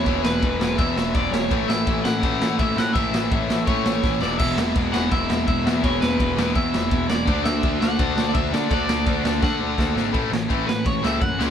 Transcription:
<<
  \new Staff \with { instrumentName = "Overdriven electric guitar" } { \time 4/4 \key a \major \tempo 4 = 167 cis''8 b'4. e''4 d''8 cis''8~ | cis''8 e''4 fis''4. e''8 fis''8 | e''2 cis''4. d''8 | e''4 r8 fis''8 e''4 e''4 |
cis''8 b'4. e''4. d''8~ | d''8 e''4 fis''4~ fis''16. d''32 e''8 d''8 | d''2 fis''4. r8 | r4. b'8 cis''8 e''8 fis''4 | }
  \new Staff \with { instrumentName = "Distorted electric guitar" } { \time 4/4 \key a \major <e gis b e'>4 <e gis b e'>8 <e gis b e'>8 <e gis b e'>4 <e gis b e'>8 <e gis b e'>8 | <a, e a cis' e'>4 <a, e a cis' e'>8 <a, e a cis' e'>8 <a, e a cis' e'>4 <a, e a cis' e'>8 <a, e a cis' e'>8 | <a, e a cis' e'>4 <a, e a cis' e'>8 <a, e a cis' e'>8 <a, e a cis' e'>4 <a, e a cis' e'>8 <e gis b e'>8 | <e gis b e'>4 <e gis b e'>8 <e gis b e'>8 <e gis b e'>4 <e gis b e'>8 <e gis b e'>8 |
<e gis b e'>4 <e gis b e'>8 <e gis b e'>8 <e gis b e'>4 <e gis b e'>8 <e gis b e'>8 | <d a d' fis'>4 <d a d' fis'>8 <d a d' fis'>8 <d a d' fis'>4 <d a d' fis'>8 <d a d' fis'>8 | <d a d' fis'>4 <d a d' fis'>8 <d a d' fis'>8 <d a d' fis'>4 <d a d' fis'>8 <d a d' fis'>8 | <a, e a cis' e'>2.~ <a, e a cis' e'>8 <cis gis cis' e'>8 | }
  \new Staff \with { instrumentName = "Distorted electric guitar" } { \clef bass \time 4/4 \key a \major r1 | r1 | r1 | <e, b, e>1 |
<e, b, e>1 | <d a d'>1 | <d a d'>1 | <a, e a>8 <a, e>8 <a, e a>8 <a, e>8 <a, e>8 <a, e a>8 <a, e>8 <cis gis cis'>8 | }
  \new Staff \with { instrumentName = "Overdriven electric guitar" } { \clef bass \time 4/4 \key a \major <e, b, e>2 <e, b, e>2 | <a, e a>2 <a, e a>2 | <a, e a>2 <a, e a>4. <e, b, e>8~ | <e, b, e>4. <e, b, e>2 <e, b, e>8~ |
<e, b, e>4. <e, b, e>2 r8 | <d a d'>2 <d a d'>2 | <d a d'>2 <d a d'>2 | <a, e a>8 <a, e>8 <a, e a>8 <a, e>8 <a, e>8 <a, e a>8 <a, e>8 <cis gis cis'>8 | }
  \new Staff \with { instrumentName = "Picked electric bass" } { \clef bass \time 4/4 \key a \major e,,8 e,,8 e,,8 e,,8 e,8 e,,8 e,,8 e,,8 | a,,8 a,,8 a,,8 a,,8 a,,8 a,,8 a,,8 a,8 | a,,8 a,,8 a,,8 a,,8 a,8 a,,8 a,,8 e,,8 | e,,8 e,,8 e,,8 e,,8 e,,8 e,,8 e,,8 e,8 |
e,,8 e,,8 e,,8 e,,8 e,8 e,,8 e,,8 e,,8 | d,8 d,8 d,8 d,8 d,8 d,8 d,8 d8 | d,8 d,8 d,8 d,8 d8 d,8 d,8 gis,,8 | a,,8 a,,8 a,,8 a,,8 a,,8 cis,8 fis,8 cis,8 | }
  \new DrumStaff \with { instrumentName = "Drums" } \drummode { \time 4/4 <bd cymr>8 sn8 <bd cymr>8 sn8 <bd cymr>8 sn8 <bd cymr>8 sn8 | <bd cymr>8 sn8 <bd cymr>8 sn8 <bd cymr>8 sn8 <bd cymr>8 sn8 | <bd cymr>8 sn8 <bd cymr>8 sn8 <bd cymr>8 sn8 <bd sn>8 sn8 | <cymc bd>8 sn8 <bd cymr>8 sn8 <bd cymr>8 sn8 <bd cymr>8 sn8 |
<bd cymr>8 sn8 <bd cymr>8 sn8 <bd cymr>8 sn8 <bd cymr>8 sn8 | <bd cymr>8 sn8 <bd cymr>8 sn8 <bd cymr>8 sn8 <bd cymr>8 sn8 | <bd cymr>8 sn8 <bd cymr>8 sn8 <bd sn>4 <bd sn>8 sn8 | <bd cymr>8 sn8 <bd cymr>8 sn8 <bd cymr>8 sn8 <bd cymr>8 sn8 | }
>>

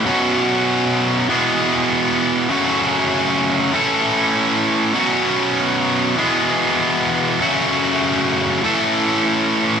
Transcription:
\new Staff \with { instrumentName = "Distorted electric guitar" } { \clef bass \time 4/4 \key a \major \tempo 4 = 98 <b, fis b cis' fis'>2 <e, b, e gis b gis'>2 | <fis, cis fis a cis' fis'>2 <a, e a cis' a'>2 | <b, fis b cis' fis'>2 <e, b, e gis b gis'>2 | <fis, cis fis a cis' fis'>2 <a, e a cis' a'>2 | }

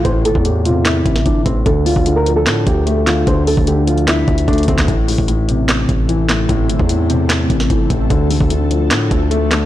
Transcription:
<<
  \new Staff \with { instrumentName = "Nylon-string guitar" } { \time 4/4 \key a \minor \tempo 4 = 149 c''8 a'8 g'8 f'8 e'4 d'8 c'8 | a'8 f'8. bes'8 a'8. g'4 f'8 | c''8 a'8 g'8 f'8 e'4 d'8 c'8 | r1 |
r1 | r1 | }
  \new Staff \with { instrumentName = "Ambient pad" } { \time 4/4 \key a \minor << { r1 | r1 | r1 | <a a'>1~ |
<a a'>1~ | <a a'>1 | } \\ { r1 | r1 | r1 | <e c'>1~ |
<e c'>1 | <f d'>1 | } >> }
  \new Staff \with { instrumentName = "Grand piano" } { \clef bass \time 4/4 \key a \minor <a, e>8 a,8 a,8 c4. e8 a,8 | d8 d8 d8 f4. a8 d8 | d8 d8 d8 f4. a8 d8 | a,8 a,8 a,8 c4. e8 a,8 |
a,8 a,8 a,8 c4. e8 a,8 | d8 d8 d8 f4. a8 d8 | }
  \new Staff \with { instrumentName = "808-style bass" } { \clef bass \time 4/4 \key a \minor a,,8 g,,16 e,4.~ e,16 a,,8 g,,8 a,,8 | d,8. d,4~ d,16 a,8 d,4. | d,8. d,4.~ d,16 d,8 d,8 d,8 | a,,8. a,,4.~ a,,16 a,,4. |
a,,8 g,,16 e,4.~ e,16 a,,8 g,,8 a,,8 | d,8. d,4~ d,16 a,8 d,4. | }
  \new DrumStaff \with { instrumentName = "Drums" } \drummode { \time 4/4 <hh bd>8 hh16 bd16 hh8 hh8 <hc hh sn>8 <hh bd>16 sn16 <hh bd>8 <hh bd>8 | <hh bd>8 hho16 bd16 hh8 hh8 <hc hh sn>8 <hh bd>8 hh8 <hc hh sn>8 | <hh bd>8 hho16 bd16 hh8 hh16 hh16 <hc hh sn>8 <hh bd>16 hh16 <hh bd>32 hh32 hh32 hh32 <hh bd>16 <hc bd sn>16 | <hh bd>8 hho16 bd16 hh8 hh8 <hc hh sn>8 <hh bd>8 hh8 <hc hh sn>8 |
<hh bd>8 hh16 bd16 hh8 hh8 <hc hh sn>8 <hh bd>16 sn16 <hh bd>8 <hh bd>8 | <hh bd>8 hho16 bd16 hh8 hh8 <hc hh sn>8 <hh bd>8 hh8 <hc hh sn>8 | }
>>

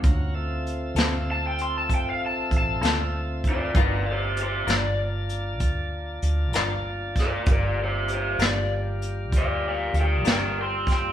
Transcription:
<<
  \new Staff \with { instrumentName = "Lead electric guitar" } { \time 12/8 \key g \dorian \tempo 4. = 65 r2 a''16 g''16 c'''16 a''16 g''16 f''16 a''8 a''8 r4 <f' d''>8 | <bes' d''>8 <g' c''>8 <g' c''>8 d''8 r2. r8 <bes' d''>8 | <bes' d''>8 <g' c''>8 <g' c''>8 d''8 r4 <d'' f''>8 <d'' f''>8 <bes' g''>8 <bes' g''>8 <g'' c'''>8 <g'' c'''>8 | }
  \new Staff \with { instrumentName = "Tonewheel organ" } { \time 12/8 \key g \dorian <cis' f' fis' bes'>8 <c' f' a' e''>1~ <c' f' a' e''>4. | <b ees' fis' bes'>8 <bes d' f' a''>1~ <bes d' f' a''>4. | <g bes d' f'>1. | }
  \new Staff \with { instrumentName = "Clean electric guitar" } { \time 12/8 \key g \dorian r4. <d c' f' a'>8 r2 r8 <d c' f' a'>8 r4 | <g d' f' bes'>8 r4 <g d' f' bes'>8 r2 r8 <g d' f' bes'>8 r4 | r4. <g d' f' bes'>8 r2 r8 <g d' f' bes'>8 r4 | }
  \new Staff \with { instrumentName = "Fingered electric bass" } { \clef bass \time 12/8 \key g \dorian d,4. d,4. a,,4 a,,8 d,4. | g,,4. g,,4. d,4 d,8 g,,4. | g,,4. g,,4. d,4 d,8 g,,4. | }
  \new DrumStaff \with { instrumentName = "Drums" } \drummode { \time 12/8 <hh bd>4 hh8 <hh sn>4 hh8 <hh bd>4 <hh bd>8 <hh sn>4 <hh bd>8 | <hh bd>4 hh8 <hh sn>4 hh8 <hh bd>4 hh8 <hh sn>4 <hh bd sn>8 | <hh bd>4 hh8 <hh sn>4 hh8 <hh bd>4 hh8 <hh sn>4 <hh bd sn>8 | }
>>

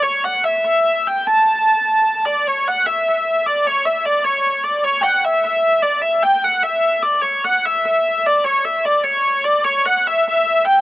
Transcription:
\new Staff \with { instrumentName = "Hurdy-gurdy" } { \time 6/8 \key e \dorian \tempo 4. = 100 cis''8 fis''8 e''8 e''4 g''8 | a''2~ a''8 d''8 | cis''8 fis''8 e''8 e''4 d''8 | cis''8 e''8 d''8 cis''4 d''8 |
cis''16. g''32 fis''8 e''8 e''4 d''8 | e''8 g''8 fis''8 e''4 d''8 | cis''8 fis''8 e''8 e''4 d''8 | cis''8 e''8 d''8 cis''4 d''8 |
cis''8 fis''8 e''8 e''4 g''8 | }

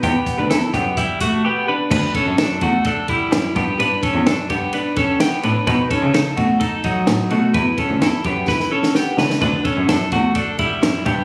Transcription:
<<
  \new Staff \with { instrumentName = "Clean electric guitar" } { \time 4/4 \key d \major \tempo 4 = 128 <b g'>8. <d' b'>16 <e' a'>8 <b g'>8 <g e'>8 <a fis'>8 <b g'>8 <d' b'>8 | <d' b'>8 <cis' a'>8 <d' a'>8 <a fis'>8 <d' a'>8 <g e'>4 <b g'>8 | <d' b'>8 <cis' a'>8 <d' a'>8 <b g'>8 <d' b'>8 <cis' a'>8 <b g'>8 <d' b'>8 | <dis' b'>8 <cis' a'>8 <dis' a'>8 <a fis'>8 <dis' a'>8 <fis dis'>4 <a fis'>8 |
<e' b'>8 <cis' a'>8 <e' a'>8 <b g'>8 <e' b'>8 <cis' a'>8 <b g'>8 <d' b'>8 | <d' b'>8 <cis' a'>8 <d' a'>8 <a fis'>8 <d' a'>8 <g e'>4 <b g'>8 | }
  \new Staff \with { instrumentName = "Cello" } { \clef bass \time 4/4 \key d \major e,8. d,16 e,8 fis,4. r4 | d,8. fis,16 fis,8 e,4. fis,8 g,8 | g,8. e,16 fis,8 g,2 a,8 | b,8. cis16 cis8 b,4. a,8 b,8 |
e,8. d,16 e,8 fis,2 cis,8 | d,8. fis,16 fis,8 e,4. fis,8 g,8 | }
  \new DrumStaff \with { instrumentName = "Drums" } \drummode { \time 4/4 <hh bd>8 <hh bd>8 <hh sn>8 <hh bd>8 <hh bd>8 <hh bd>8 r4 | <cymc bd>8 <bd cymr>8 <cymr sn>8 <bd cymr>8 <bd cymr>8 <bd cymr>8 <cymr sn>8 <bd cymr>8 | cymr8 <bd cymr>8 <cymr sn>8 <bd cymr>8 cymr8 <bd cymr>8 <cymr sn>8 cymr8 | <bd cymr>8 <bd cymr>8 <cymr sn>8 <bd cymr>8 <bd cymr>8 <bd cymr>8 <cymr sn>8 cymr8 |
<bd cymr>8 <bd cymr>8 <cymr sn>8 <bd cymr>8 <bd sn>16 sn8 sn16 sn8 sn16 sn16 | <cymc bd>8 <bd cymr>8 <cymr sn>8 <bd cymr>8 <bd cymr>8 <bd cymr>8 <cymr sn>8 <bd cymr>8 | }
>>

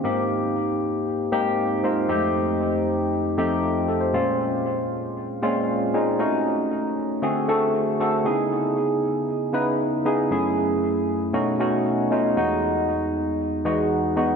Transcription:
\new Staff \with { instrumentName = "Tine electric piano" } { \time 4/4 \key des \lydian \tempo 4 = 117 << { r1 | r2. f'8 a'16 c''16~ | c''16 r2. r8. | r1 |
r1 | r1 | r1 | } \\ { <aes, bes c' ees' g'>4. r4 <aes, bes c' ees' g'>8 r8 <aes, bes c' ees' f'>8 | <f, aes a c' ees' g'>4. r4 <f, a c' ees' g'>8 r4 | <bes, aes c' des' f'>4. r4 <bes, aes c' des' f'>8 r8 <bes, aes c' des' ees'>8 | <a des' ees' ges'>4. r8 <d a c' fis' gis'>8 <d a c' fis' a'>8 r8 <d a c' fis' a'>8 |
<des ces' ees' fes' aes'>4. r4 <des ces' ees' fes' ces''>8 r8 <des ces' ees' fes' aes'>8 | <ges, a des' fes' aes'>4. r8 <b, a des' dis' fis'>8 <b, a des' dis' fis'>8 r8 <b, a des' dis' f'>8 | <e, gis b dis' ges'>4. r4 <e, gis b dis' ges'>8 r8 <e, gis b dis' ges'>8 | } >> }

